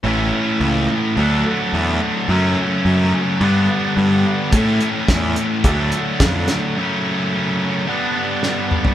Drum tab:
HH |----------------|----------------|x-x-x-x-x-x-x-x-|----------------|
SD |----------------|----------------|----o-------o-o-|------------o---|
T2 |----------------|----------------|----------------|--------------o-|
FT |----------------|----------------|----------------|---------------o|
BD |----------------|----------------|o---o---o---o---|----------------|